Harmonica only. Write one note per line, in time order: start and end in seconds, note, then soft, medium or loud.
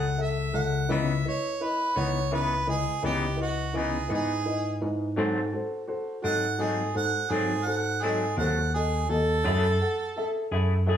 0.00 0.23 F#5 medium
0.22 0.58 E5 medium
0.56 0.93 F#5 medium
0.92 1.25 E5 loud
1.28 1.65 C#5 medium
1.63 2.00 B4 medium
1.98 2.32 C#5 loud
2.34 2.68 B4 medium
2.70 3.03 G#4 loud
3.05 3.39 G4 medium
3.42 3.79 F#4 medium
3.77 4.10 G#4 medium
4.14 4.81 G#4 loud
6.25 6.64 F#5 loud
6.62 6.95 G#4 medium
6.97 7.34 F#5 loud
7.32 7.68 G#4 medium
7.67 8.04 F#5 loud
8.03 8.37 G#4 medium
8.38 8.72 F#5 medium
8.74 9.11 G#4 medium
9.09 10.47 A4 loud